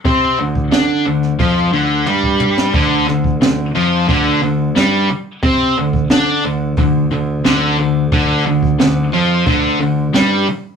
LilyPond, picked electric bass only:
\new Staff \with { instrumentName = "Picked electric bass" } { \clef bass \time 4/4 \key d \minor \tempo 4 = 89 c8 d,8 d8 d,8 f,8 d,8 g,4 | d,8 d,8 d,8 f,8 d,8 d,8 g,8 r8 | c8 d,8 d8 d,8 d,8 d,8 d,8 d,8 | d,8 d,8 d,8 f,8 d,8 d,8 g,8 r8 | }